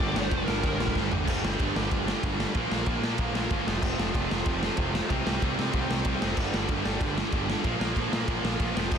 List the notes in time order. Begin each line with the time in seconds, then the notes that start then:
Already playing: G2 D3 G3 D5
0.00 G1 G2 D3 G3 A#3 D4
0.16 G1 G2 D3 G3 A#3 D4 C5, snare
0.31 F1 G2 D3 G3 A#3 D4 A#4, kick, ride
0.48 G1 G2 D3 G3 A#3 D4, snare
0.63 G1 G2 D3 G3 A#3 D4 A#4, kick, ride
0.79 A#1 G2 D3 G3 A#3 D4, snare
0.87 kick
0.95 G1 G2 D3 G3 A#3 D4, kick, snare
1.11 G1 G2 D3 G3 A#3 D4, floor tom
1.28 G1 G2 D3 G3 A#3 D4, kick, crash
1.43 G1 G2 D3 G3 A#3 D4, snare
1.59 G1 G2 D3 G3 A#3 D4, kick, ride
1.76 G1 G2 D3 G3 A#3 D4, snare
1.91 G1 G2 D3 G3 A#3 D4, kick, ride
2.07 G2 D3 G3 A#3 D4, snare
2.23 G1 G2 D3 G3 A#3 D4, kick, ride
2.39 G2 D3 G3 A#3 D4, snare
2.55 A#1 A#2 F3 A#3 D4, kick, ride
2.71 A#1 A#2 F3 A#3 D4, snare
2.86 A#1 A#2 F3 A#3 D4, kick, ride
3.03 A#2 F3 A#3 D4, snare
3.18 A#1 A#2 F3 A#3 D4, kick, ride
3.34 A#1 A#2 F3 A#3 D4, snare
3.50 G1 A#2 F3 A#3 D4, kick, ride
3.67 F1 F2 C3 F3 A3 C4, snare
3.82 F1 F2 C3 F3 A3 C4, kick, crash
3.98 F1 F2 C3 F3 A3 C4, snare
4.14 F1 F2 C3 F3 A3 C4, kick, ride
4.30 F1 F2 C3 F3 A3 C4, snare
4.46 F1 F2 C3 F3 A3 C4, kick, ride
4.62 F2 C3 F3 A3 C4, snare
4.77 F1 F2 C3 F3 A3 C4, kick, ride
4.93 F2 C3 F3 A3 C4, snare
5.09 C2 C3 G3 C4 D#4, kick, ride
5.25 C2 C3 G3 C4 D#4, snare
5.41 C2 C3 G3 C4 D#4, kick, ride
5.58 C3 G3 C4 D#4, snare
5.73 C2 C3 G3 C4 D#4, kick, ride
5.90 C2 C3 G3 C4 D#4, snare
6.05 C2 C3 G3 C4 D#4, kick, ride
6.21 F1 C3 G3 C4 D#4, snare
6.37 G1 G2 D3 G3 A#3 D4, kick, crash
6.53 G1 G2 D3 G3 A#3 D4, snare
6.69 G1 G2 D3 G3 A#3 D4, kick, ride
6.85 G1 G2 D3 G3 A#3 D4, snare
7.01 G1 G2 D3 G3 A#3 D4, kick, ride
7.17 G2 D3 G3 A#3 D4, snare
7.32 G1 G2 D3 G3 A#3 D4, kick, ride
7.48 G2 D3 G3 A#3 D4, snare
7.64 A#1 A#2 F3 A#3 D4, kick, ride
7.80 A#1 A#2 F3 A#3 D4, snare
7.96 A#1 A#2 F3 A#3 D4, kick, ride
8.12 A#2 F3 A#3 D4, snare
8.27 A#1 A#2 F3 A#3 D4, kick, ride
8.43 A#1 A#2 F3 A#3 D4, snare
8.59 A#1 A#2 F3 A#3 D4, kick, ride
8.74 F1 F2 C3 F3 A3 C4, snare
8.91 F1 F2 C3 F3 A3 C4, kick, crash